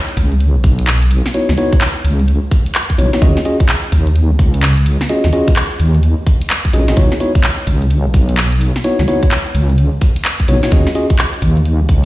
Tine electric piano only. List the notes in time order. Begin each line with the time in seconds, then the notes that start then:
1.34 B3 D#4 E4 F#4 C#5
1.58 B3 D#4 E4 F#4 C#5
2.98 B3 D#4 E4 F#4 C#5
3.13 B3 D#4 E4 F#4 C#5
3.22 C#4 F4 F#4 G#4 D#5
3.45 C#4 F4 F#4 G#4 D#5
5.09 C#4 F4 F#4 G#4 D#5
5.33 C#4 F4 F#4 G#4 D#5
6.74 C#4 F4 F#4 G#4 D#5
6.88 C#4 F4 F#4 G#4 D#5
6.97 B3 D#4 E4 F#4 C#5
7.20 B3 D#4 E4 F#4 C#5
8.84 B3 D#4 E4 F#4 C#5
9.08 B3 D#4 E4 F#4 C#5
10.49 B3 D#4 E4 F#4 C#5
10.63 B3 D#4 E4 F#4 C#5
10.72 C#4 F4 F#4 G#4 D#5
10.95 C#4 F4 F#4 G#4 D#5